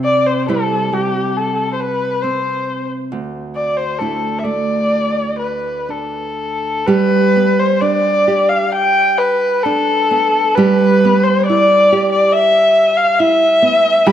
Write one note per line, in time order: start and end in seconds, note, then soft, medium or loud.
0.00 3.11 C3 medium
0.00 0.48 G3 soft
0.00 0.48 C4 soft
0.04 0.28 D5 medium
0.26 0.48 C5 medium
0.48 0.91 G3 soft
0.48 2.23 C4 soft
0.48 3.99 E4 soft
0.48 0.95 A4 medium
0.92 3.20 G3 soft
0.92 1.38 G4 medium
1.37 1.73 A4 medium
1.73 1.81 C5 soft
1.80 2.24 B4 medium
2.22 3.20 C4 soft
2.22 2.88 C5 medium
3.12 6.89 D2 medium
3.56 3.78 D5 medium
3.77 3.99 C5 medium
3.98 4.43 A3 soft
3.98 5.88 D4 soft
3.98 6.88 E4 soft
3.98 4.40 A4 medium
4.39 4.45 E5 soft
4.43 6.98 A3 soft
4.43 5.38 D5 medium
5.39 5.91 B4 medium
5.89 7.81 D4 soft
5.89 6.88 A4 medium
6.86 10.56 G3 medium
6.86 8.27 G4 medium
6.86 7.61 B4 medium
7.36 10.11 B3 soft
7.59 7.82 C5 medium
7.81 9.64 D4 soft
7.81 8.50 D5 medium
8.28 10.58 G4 soft
8.49 8.74 F5 medium
8.72 9.19 G5 medium
9.18 9.65 B4 medium
9.63 10.68 D4 medium
9.63 10.56 A4 medium
10.11 11.04 B3 soft
10.55 14.06 G3 medium
10.55 11.92 G4 medium
10.55 11.25 B4 medium
11.05 13.62 B3 medium
11.23 11.45 C5 medium
11.46 13.19 E4 medium
11.46 12.08 D5 medium
11.92 14.07 G4 medium
12.12 12.34 D5 medium
12.32 12.98 E5 medium
12.97 13.20 F5 medium
13.19 14.12 E4 medium
13.19 14.08 E5 loud
13.62 14.12 B3 medium
14.06 14.12 G3 medium
14.06 14.12 G4 medium
14.06 14.12 B5 loud